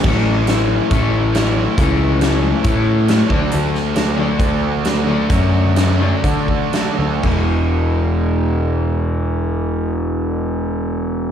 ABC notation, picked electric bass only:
X:1
M:4/4
L:1/8
Q:1/4=131
K:Amix
V:1 name="Picked electric bass" clef=bass
A,,,4 A,,,4 | C,,4 A,,3 D,, | D,,4 D,,4 | F,,4 D,3 D,, |
E,,,8- | E,,,8 |]